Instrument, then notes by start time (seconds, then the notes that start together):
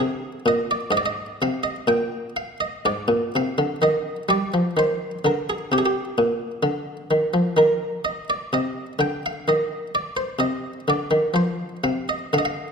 harpsichord
Already playing: C3
0.00 G#4
0.46 A#2 D#5
0.71 D5
0.91 G#2 D#5
0.97 D5
1.06 D#5
1.42 C3 F5
1.63 D#5
1.87 A#2 G5
2.36 F5
2.60 D#5
2.85 G#2 D5
3.08 A#2
3.35 C3 F5
3.58 D3
3.82 D#3 D#5
4.29 G3 D5
4.54 F3
4.77 D#3 C5
5.25 D3 A#4
5.50 G#4
5.72 C3 G4
5.78 G#4
5.86 G4
6.18 A#2
6.63 D3
7.11 D#3
7.34 F3
7.57 D#3 A#4
8.05 D#5
8.30 D5
8.53 C3 D#5
8.99 D3 G5
9.26 F5
9.48 D#3 D#5
9.95 D5
10.17 C5
10.39 C3 D#5
10.88 D3 D5
11.11 D#3
11.34 F3 C5
11.84 C3 F5
12.09 D#5
12.33 D3 F5
12.38 D#5
12.45 F5